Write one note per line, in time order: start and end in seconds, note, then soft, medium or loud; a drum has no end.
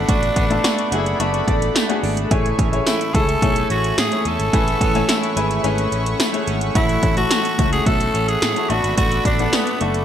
0.00 0.60 A2 medium
0.00 0.40 A3 medium
0.00 6.72 A3 medium
0.00 0.41 B3 medium
0.00 0.41 D4 medium
0.00 1.48 D4 loud
0.00 0.41 F#4 medium
0.00 0.41 A4 medium
0.00 2.29 D5 medium
0.00 2.27 F#5 medium
0.00 2.29 B5 medium
0.09 0.30 A1 loud
0.09 0.64 A3 medium
0.09 0.91 F#4 medium
0.09 kick loud
0.09 closed hi-hat medium
0.23 closed hi-hat soft
0.36 0.57 A1 medium
0.36 0.44 B3 medium
0.36 1.46 D4 medium
0.36 kick medium
0.36 closed hi-hat medium
0.50 0.86 A3 loud
0.50 0.86 B3 medium
0.50 0.86 D4 medium
0.50 0.87 F#4 medium
0.50 0.87 A4 loud
0.50 closed hi-hat soft
0.64 1.19 A3 medium
0.64 0.92 F#4 loud
0.64 snare loud
0.64 closed hi-hat loud
0.64 tambourine medium
0.78 closed hi-hat medium
0.92 1.13 F#1 medium
0.92 1.16 A3 medium
0.92 1.16 B3 medium
0.92 1.16 D4 medium
0.92 1.20 E4 loud
0.92 2.31 F#4 medium
0.92 1.16 F#4 medium
0.92 1.17 G#4 loud
0.92 closed hi-hat medium
1.06 closed hi-hat medium
1.20 1.41 F#1 medium
1.20 1.79 A3 medium
1.20 1.75 A3 medium
1.20 1.80 B3 medium
1.20 1.80 D4 medium
1.20 1.46 F#4 loud
1.20 1.80 F#4 medium
1.20 1.80 A4 loud
1.20 closed hi-hat medium
1.34 closed hi-hat medium
1.47 1.69 A1 medium
1.47 2.02 D4 medium
1.47 1.55 D4 medium
1.47 kick medium
1.47 closed hi-hat medium
1.62 closed hi-hat medium
1.75 2.68 A3 medium
1.75 2.86 A3 medium
1.75 snare loud
1.75 closed hi-hat medium
1.75 tambourine medium
1.89 2.25 A3 medium
1.89 2.25 B3 medium
1.89 2.25 D4 medium
1.89 2.25 F#4 medium
1.89 2.25 G#4 loud
1.89 closed hi-hat medium
2.03 2.24 G#1 medium
2.03 2.37 D4 medium
2.03 open hi-hat medium
2.17 closed hi-hat medium
2.31 2.52 A1 loud
2.31 3.10 A2 medium
2.31 4.53 E3 medium
2.31 2.67 A3 medium
2.31 2.67 C#4 medium
2.31 2.67 E4 medium
2.31 2.67 G#4 medium
2.31 3.13 G#4 medium
2.31 2.67 C#5 medium
2.31 8.66 E5 medium
2.31 4.51 G#5 medium
2.31 8.66 C#6 medium
2.31 kick loud
2.31 closed hi-hat medium
2.46 closed hi-hat soft
2.59 2.79 A1 loud
2.59 3.69 C#4 medium
2.59 kick loud
2.59 closed hi-hat medium
2.72 3.08 A3 medium
2.72 3.09 C#4 medium
2.72 3.09 E4 medium
2.72 3.09 G#4 medium
2.72 3.09 C#5 medium
2.72 closed hi-hat soft
2.87 3.42 A3 medium
2.87 3.16 E4 loud
2.87 snare loud
2.87 closed hi-hat loud
2.87 tambourine medium
3.01 closed hi-hat medium
3.14 3.35 C#2 medium
3.14 3.38 A3 medium
3.14 3.39 C#4 medium
3.14 3.39 E4 medium
3.14 4.53 G#4 medium
3.14 3.39 G#4 medium
3.14 3.70 A4 loud
3.14 3.39 A4 medium
3.14 kick loud
3.14 closed hi-hat medium
3.29 closed hi-hat medium
3.42 3.63 B1 medium
3.42 3.97 A3 medium
3.42 4.02 A3 medium
3.42 4.02 C#4 medium
3.42 4.02 E4 medium
3.42 4.02 G#4 medium
3.42 4.02 C#5 medium
3.42 kick medium
3.42 closed hi-hat medium
3.56 closed hi-hat medium
3.70 3.91 A1 medium
3.70 4.25 C#4 medium
3.70 3.96 F#4 loud
3.70 closed hi-hat medium
3.84 closed hi-hat medium
3.97 4.08 A2 loud
3.97 5.09 A3 medium
3.97 4.28 G#4 loud
3.97 snare loud
3.97 closed hi-hat medium
3.97 tambourine medium
4.11 4.47 A3 medium
4.11 4.47 C#4 medium
4.11 4.47 E4 medium
4.11 4.48 G#4 medium
4.11 4.48 C#5 medium
4.11 closed hi-hat medium
4.25 4.36 E2 medium
4.25 4.81 C#4 medium
4.25 5.93 A4 loud
4.25 closed hi-hat medium
4.39 4.50 G#1 loud
4.39 closed hi-hat medium
4.53 4.74 A1 loud
4.53 5.33 A2 medium
4.53 6.74 E3 medium
4.53 4.89 A3 medium
4.53 4.89 C#4 medium
4.53 4.89 E4 medium
4.53 5.35 G#4 medium
4.53 4.90 B4 medium
4.53 8.66 F#5 medium
4.53 4.89 G#5 medium
4.53 kick loud
4.53 closed hi-hat medium
4.68 closed hi-hat soft
4.81 5.02 A1 loud
4.81 4.94 B3 medium
4.81 5.92 C#4 medium
4.81 kick medium
4.81 closed hi-hat medium
4.95 5.31 A3 medium
4.95 5.31 C#4 medium
4.95 5.00 C#4 medium
4.95 5.31 E4 medium
4.95 5.31 C#5 loud
4.95 5.31 G#5 medium
4.95 closed hi-hat soft
5.09 5.64 A3 medium
5.09 5.64 E4 loud
5.09 snare loud
5.09 closed hi-hat loud
5.09 tambourine medium
5.23 closed hi-hat medium
5.36 5.57 G#1 medium
5.36 5.60 A3 medium
5.36 5.60 C#4 medium
5.36 5.61 E4 medium
5.36 6.75 G#4 medium
5.36 5.61 G#4 medium
5.36 5.61 B4 loud
5.36 closed hi-hat medium
5.51 closed hi-hat medium
5.63 5.85 G#1 loud
5.63 6.24 A3 medium
5.63 6.19 A3 medium
5.63 6.24 C#4 medium
5.63 6.22 C#4 medium
5.63 6.24 E4 medium
5.63 6.24 G#4 medium
5.63 6.24 B4 loud
5.63 closed hi-hat medium
5.78 closed hi-hat medium
5.92 6.13 A1 medium
5.92 6.47 C#4 medium
5.92 closed hi-hat medium
6.06 closed hi-hat medium
6.20 7.31 A3 medium
6.20 6.59 A3 medium
6.20 snare loud
6.20 closed hi-hat medium
6.20 tambourine medium
6.33 6.69 A3 medium
6.33 6.69 C#4 medium
6.33 6.69 E4 medium
6.33 6.69 G#4 medium
6.33 6.70 C#5 loud
6.33 closed hi-hat medium
6.47 6.68 G#1 medium
6.47 6.81 C#4 medium
6.47 closed hi-hat medium
6.61 closed hi-hat medium
6.75 6.96 A1 loud
6.75 7.55 A2 medium
6.75 8.75 E3 medium
6.75 7.11 A3 medium
6.75 10.05 A3 medium
6.75 7.11 C#4 medium
6.75 7.11 E4 medium
6.75 7.15 E4 loud
6.75 7.59 F#4 medium
6.75 7.12 F#4 medium
6.75 7.12 A4 medium
6.75 kick loud
6.75 closed hi-hat medium
6.89 closed hi-hat soft
7.03 7.24 A1 medium
7.03 8.13 C#4 medium
7.03 kick medium
7.03 closed hi-hat medium
7.17 7.53 A3 medium
7.17 7.53 C#4 medium
7.17 7.53 E4 medium
7.17 7.53 F#4 medium
7.17 7.69 F#4 loud
7.17 7.53 A4 medium
7.17 closed hi-hat soft
7.31 7.86 A3 medium
7.31 snare loud
7.31 closed hi-hat loud
7.31 tambourine medium
7.45 closed hi-hat medium
7.59 7.80 C#2 medium
7.59 7.83 A3 medium
7.59 7.83 C#4 medium
7.59 7.83 E4 medium
7.59 8.76 F#4 medium
7.59 7.83 F#4 medium
7.59 7.83 A4 medium
7.59 kick loud
7.59 closed hi-hat medium
7.73 7.88 G#4 loud
7.73 closed hi-hat medium
7.86 8.07 B1 medium
7.86 8.46 A3 medium
7.86 8.42 A3 medium
7.86 8.46 C#4 medium
7.86 8.46 E4 medium
7.86 8.47 F#4 medium
7.86 8.30 A4 loud
7.86 8.47 A4 medium
7.86 kick medium
7.86 closed hi-hat medium
8.01 closed hi-hat medium
8.14 8.35 A1 medium
8.14 8.75 C#4 medium
8.14 closed hi-hat medium
8.28 8.72 G#4 loud
8.28 closed hi-hat medium
8.42 8.53 A2 loud
8.42 8.69 A3 medium
8.42 snare loud
8.42 closed hi-hat medium
8.42 tambourine medium
8.56 8.68 A3 medium
8.56 8.70 C#4 medium
8.56 8.70 E4 medium
8.56 8.69 F#4 medium
8.56 8.70 A4 medium
8.56 closed hi-hat medium
8.70 8.80 A1 medium
8.70 9.50 A2 medium
8.70 8.97 A3 medium
8.70 9.30 A3 medium
8.70 9.30 B3 medium
8.70 9.30 D4 medium
8.70 8.97 F#4 loud
8.70 9.30 F#4 medium
8.70 9.30 A4 medium
8.70 10.05 D5 medium
8.70 10.05 F#5 medium
8.70 10.05 B5 medium
8.70 closed hi-hat medium
8.84 8.94 G#1 loud
8.84 closed hi-hat medium
8.97 9.19 A1 loud
8.97 9.53 A3 medium
8.97 9.23 F#4 loud
8.97 9.80 F#4 medium
8.97 kick loud
8.97 closed hi-hat medium
9.12 closed hi-hat soft
9.25 9.46 A1 loud
9.25 10.05 D4 medium
9.25 9.56 D4 loud
9.25 kick medium
9.25 closed hi-hat medium
9.39 9.75 A3 medium
9.39 9.75 B3 medium
9.39 9.75 D4 medium
9.39 9.76 F#4 medium
9.39 9.76 A4 medium
9.39 closed hi-hat soft
9.53 10.05 A3 medium
9.53 9.83 B3 loud
9.53 snare loud
9.53 closed hi-hat loud
9.53 tambourine medium
9.67 closed hi-hat medium
9.81 10.02 F#1 medium
9.81 10.05 A3 medium
9.81 10.05 B3 medium
9.81 10.05 D4 medium
9.81 10.05 F#4 medium
9.81 10.05 A4 medium
9.81 closed hi-hat medium
9.94 closed hi-hat medium